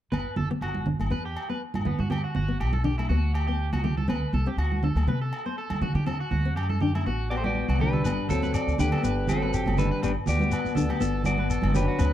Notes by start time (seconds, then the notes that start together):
0.12 G1 B3 B4, low conga, low agogo
0.36 F#1 A4, high conga, low conga
0.51 B3, muted clean electric guitar stroke
0.61 G1 F#4, low agogo
0.74 high conga
0.86 D4, low conga
0.99 G1 A3, low agogo
1.10 E2 B3 B4
1.25 G4
1.37 low agogo
1.49 B3 B4
1.74 G1, high conga, low agogo
1.85 G2 A3 B3, low conga
1.99 G2 F#4, high conga
2.10 B3 G4, low conga, low agogo
2.24 F#4
2.35 G1 F#4, high conga, low conga
2.48 B3
2.60 B1 G4, low agogo
2.73 A4, high conga
2.84 D4 G4, low conga
2.98 A3 E4, low agogo
3.09 D2 B3 F#4
3.34 G4, low agogo
3.47 B3 G4
3.73 C#2 F#4, high conga, low agogo
3.84 A3 G4, low conga
3.97 A4, high conga
4.08 D2 C4 B4, low conga, low agogo
4.33 C2 A4, high conga, low conga
4.46 C4 G4
4.57 D2 F#4, low agogo
4.71 high conga
4.83 D4 A4, low conga
4.95 D2 A3, low agogo
5.07 C3 B3 B4
5.21 A4
5.33 low agogo
5.46 B3 C5
5.58 A4
5.70 D2, high conga, low agogo
5.81 D3 A3 F#4, low conga
5.95 D3 G4, high conga
6.06 C4 A4, low conga, low agogo
6.20 F#4
6.31 D2 F#4, high conga, low conga
6.45 C4
6.56 F#2 G4, low agogo
6.69 A4, high conga
6.80 D4 G4, low conga
6.95 A3 E4, low agogo
7.06 A1 B3 F#4
7.30 B3 F#4 G4 D5, low agogo
7.37 A3 C5
7.44 B3 F#4 G4 D5, high conga
7.55 high conga
7.68 C2 F#4, high conga, low agogo
7.79 G3 A3 D4 G4 B4, low conga
7.93 A4, low conga
8.04 G1 B3 B4, low agogo, shekere
8.29 D2 F#3 C4 A4, low conga, shekere
8.42 B4, muted nylon-string guitar stroke, high conga, shekere
8.54 D5, low agogo, shekere
8.67 D2, shekere
8.78 D2 D3 B3 D4 G4 B4, low conga, shekere
8.92 A3 A4, low agogo
9.03 G1 B3 B4, shekere
9.27 F#3 C4 G4 A4, high conga, low conga, low agogo, shekere
9.42 B3 B4
9.53 G4, shekere
9.66 F#1, high conga, low agogo
9.77 G3 A3 D4 A4 B4, low conga, shekere
9.91 B4
10.03 G1 G3 B3 D4 B4, muted clean electric guitar stroke, low agogo, shekere
10.26 D2 B3 G4 D5, low conga, shekere
10.30 F#4
10.39 B3 G4, high conga, shekere
10.51 B4, low agogo, shekere
10.65 D2, shekere
10.75 D2 D4 A4, low conga, shekere
10.89 A3 G4, low agogo
11.00 G1 B3 A4, shekere
11.24 B3 F#4 D5, muted clean electric guitar stroke, high conga, low conga, low agogo, shekere
11.37 B3 B4
11.50 A4, shekere
11.62 F#1, high conga, low agogo
11.74 F#3 A3 D4 G4 B4, low conga, shekere
11.88 F#4
11.99 D2 C4 B4, low agogo, shekere